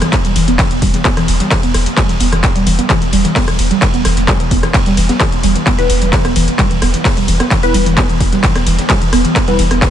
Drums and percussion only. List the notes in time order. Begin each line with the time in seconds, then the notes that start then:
0.01 cross-stick, snare, closed hi-hat
0.12 kick, clap, closed hi-hat, ride
0.25 closed hi-hat
0.36 closed hi-hat, open hi-hat
0.48 closed hi-hat
0.59 kick, cross-stick, snare, clap, closed hi-hat, ride
0.71 closed hi-hat
0.82 kick, closed hi-hat, open hi-hat
0.94 snare, closed hi-hat
1.05 kick, clap, closed hi-hat, ride
1.17 cross-stick, snare, closed hi-hat
1.28 closed hi-hat, open hi-hat
1.40 snare, closed hi-hat
1.51 kick, snare, clap, closed hi-hat, ride
1.63 closed hi-hat
1.74 cross-stick, closed hi-hat, open hi-hat
1.86 closed hi-hat
1.97 kick, clap, closed hi-hat, ride
2.09 snare, closed hi-hat
2.20 closed hi-hat, open hi-hat
2.33 cross-stick, closed hi-hat
2.43 kick, snare, clap, closed hi-hat, ride
2.56 closed hi-hat
2.66 closed hi-hat, open hi-hat
2.79 closed hi-hat
2.90 kick, cross-stick, clap, closed hi-hat, ride
3.02 closed hi-hat
3.13 closed hi-hat, open hi-hat
3.25 closed hi-hat
3.36 kick, snare, clap, closed hi-hat, open hi-hat, ride
3.48 cross-stick, closed hi-hat
3.59 closed hi-hat, open hi-hat
3.71 snare, closed hi-hat
3.82 kick, clap, closed hi-hat, ride
3.94 closed hi-hat
4.05 cross-stick, closed hi-hat, open hi-hat
4.17 closed hi-hat
4.28 kick, snare, clap, closed hi-hat, ride
4.40 closed hi-hat
4.51 kick, closed hi-hat, open hi-hat
4.63 cross-stick, snare, closed hi-hat
4.74 kick, clap, closed hi-hat, ride
4.86 snare, closed hi-hat
4.97 closed hi-hat, open hi-hat
5.09 snare, closed hi-hat
5.20 kick, cross-stick, snare, clap, closed hi-hat, ride
5.32 closed hi-hat
5.43 closed hi-hat, open hi-hat
5.55 closed hi-hat
5.67 kick, cross-stick, clap, closed hi-hat, ride
5.79 snare, closed hi-hat
5.90 closed hi-hat, open hi-hat
6.02 closed hi-hat
6.13 kick, snare, clap, closed hi-hat, ride
6.25 cross-stick, closed hi-hat
6.36 closed hi-hat, open hi-hat
6.48 closed hi-hat
6.59 kick, clap, closed hi-hat, ride
6.71 closed hi-hat
6.82 cross-stick, closed hi-hat, open hi-hat
6.94 closed hi-hat
7.05 kick, snare, clap, closed hi-hat, open hi-hat, ride
7.17 closed hi-hat
7.28 closed hi-hat, open hi-hat
7.40 cross-stick, snare, closed hi-hat
7.51 kick, clap, closed hi-hat, ride
7.63 closed hi-hat
7.74 closed hi-hat, open hi-hat
7.86 closed hi-hat
7.97 kick, cross-stick, snare, clap, closed hi-hat, ride
8.10 closed hi-hat
8.20 kick, closed hi-hat, open hi-hat
8.32 snare, closed hi-hat
8.43 kick, clap, closed hi-hat, ride
8.55 cross-stick, snare, closed hi-hat
8.67 closed hi-hat, open hi-hat
8.79 snare, closed hi-hat
8.89 kick, snare, clap, closed hi-hat, ride
9.02 closed hi-hat
9.13 cross-stick, closed hi-hat, open hi-hat
9.25 closed hi-hat
9.36 kick, clap, closed hi-hat, ride
9.48 snare, closed hi-hat
9.59 closed hi-hat, open hi-hat
9.71 cross-stick, closed hi-hat
9.82 kick, snare, clap, closed hi-hat, ride